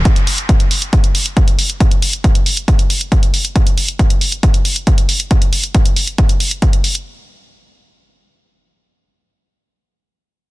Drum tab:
HH |xxoxxxoxxxoxxxox|xxoxxxoxxxoxxxox|xxoxxxoxxxoxxxox|xxoxxxoxxxoxxxox|
BD |o---o---o---o---|o---o---o---o---|o---o---o---o---|o---o---o---o---|

HH |----------------|----------------|
BD |----------------|----------------|